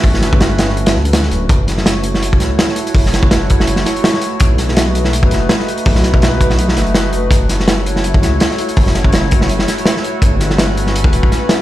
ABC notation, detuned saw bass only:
X:1
M:4/4
L:1/8
Q:"Swing 16ths" 1/4=165
K:F#phr
V:1 name="Detuned saw bass" clef=bass
G,,,4- G,,, D,,2 D,,, | F,,,4- F,,, C,, z2 | F,,,4- F,,, z3 | B,,,4- B,,, F,,, z2 |
B,,,4- B,,, F,,,2 F,,, | F,,,4- F,,, C,, z2 | F,,,4- F,,, z3 | G,,,4- G,,, D,,, z2 |]